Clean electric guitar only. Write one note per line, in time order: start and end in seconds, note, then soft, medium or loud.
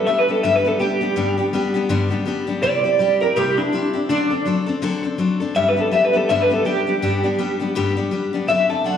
0.07 0.19 E5 medium
0.19 0.31 B4 medium
0.31 0.43 A4 medium
0.43 0.55 E5 medium
0.56 0.67 B4 medium
0.68 0.80 A4 medium
0.80 1.87 G4 medium
2.63 3.19 D5 loud
3.21 3.36 A#4 medium
3.37 3.57 G4 medium
3.58 4.08 D4 medium
4.09 4.45 D4 loud
5.56 5.68 E5 loud
5.69 5.80 B4 medium
5.81 5.92 A4 medium
5.93 6.04 E5 medium
6.05 6.17 B4 medium
6.17 6.29 A4 medium
6.29 6.41 E5 medium
6.41 6.53 B4 medium
6.54 6.65 A4 medium
6.66 7.73 G4 medium
8.49 8.70 E5 medium
8.70 8.86 A5 medium
8.86 8.97 F#5 loud